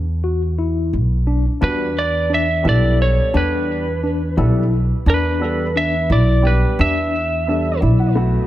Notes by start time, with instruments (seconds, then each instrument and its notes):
Already playing: upright bass E2
0.24 tine electric piano F#4
0.58 tine electric piano E4
0.93 upright bass B1
1.27 tine electric piano D4
1.61 upright bass E2, grand piano G3 B3 D4 F#4, tine electric piano D4, lead electric guitar B4
1.98 lead electric guitar D5
2.30 tine electric piano D4
2.34 lead electric guitar E5
2.63 upright bass B1, grand piano G3 B3 D4 A4, tine electric piano E4
2.69 lead electric guitar D5
3.02 lead electric guitar C#5
3.34 upright bass E2, grand piano G3 B3 D4 G4, tine electric piano D4, lead electric guitar B4
4.03 tine electric piano D4
4.37 upright bass B1, grand piano G3 B3 D4 A4, tine electric piano E4
5.06 upright bass E2, tine electric piano D4, lead electric guitar B4
5.39 grand piano G3 B3 D4 A4
5.76 tine electric piano D4, lead electric guitar E5
6.10 upright bass B1, tine electric piano E4, lead electric guitar D5
6.42 grand piano G3 B3 D4 G4
6.47 lead electric guitar B4
6.79 upright bass E2, tine electric piano D4, lead electric guitar E5
7.47 grand piano G3 B3 D4 A4, tine electric piano D4
7.81 upright bass B1, tine electric piano E4, grand piano D5
7.99 grand piano F#5
8.15 grand piano A3 B3 E4 F#4